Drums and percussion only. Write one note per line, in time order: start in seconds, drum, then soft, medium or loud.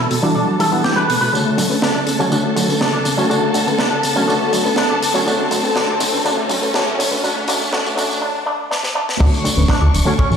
0.11 open hi-hat loud
0.60 open hi-hat loud
0.84 snare loud
1.10 open hi-hat loud
1.35 tambourine soft
1.58 open hi-hat loud
1.58 tambourine medium
1.71 tambourine soft
1.82 snare loud
1.82 tambourine soft
2.07 open hi-hat loud
2.07 tambourine medium
2.20 tambourine soft
2.32 tambourine soft
2.56 open hi-hat loud
2.56 tambourine medium
2.70 tambourine soft
2.81 snare loud
2.81 tambourine soft
3.05 open hi-hat loud
3.05 tambourine medium
3.19 tambourine soft
3.31 tambourine soft
3.54 open hi-hat loud
3.54 tambourine medium
3.68 tambourine soft
3.79 snare loud
3.79 tambourine soft
4.03 open hi-hat loud
4.03 tambourine medium
4.17 tambourine soft
4.30 tambourine soft
4.53 open hi-hat medium
4.53 tambourine medium
4.66 tambourine soft
4.76 snare loud
4.76 tambourine soft
5.03 open hi-hat loud
5.03 tambourine medium
5.15 tambourine soft
5.28 tambourine soft
5.51 open hi-hat loud
5.51 tambourine medium
5.65 tambourine soft
5.76 snare loud
5.76 tambourine soft
6.00 open hi-hat loud
6.00 tambourine medium
6.14 tambourine soft
6.26 tambourine soft
6.49 open hi-hat loud
6.49 tambourine medium
6.63 tambourine soft
6.74 snare loud
6.74 tambourine soft
7.00 open hi-hat loud
7.00 tambourine medium
7.13 tambourine soft
7.24 tambourine soft
7.48 open hi-hat loud
7.48 tambourine medium
7.62 tambourine soft
7.73 snare loud
7.73 tambourine soft
7.86 tambourine soft
7.98 open hi-hat loud
7.98 tambourine medium
8.10 tambourine soft
8.72 snare medium
8.83 snare medium
9.09 snare medium
9.21 kick loud
9.21 crash loud
9.21 tambourine soft
9.34 tambourine soft
9.45 open hi-hat loud
9.45 tambourine medium
9.58 tambourine soft
9.68 kick loud
9.68 snare loud
9.68 tambourine soft
9.94 open hi-hat loud
9.94 tambourine medium
10.08 tambourine soft
10.19 kick loud
10.19 tambourine soft
10.32 tambourine soft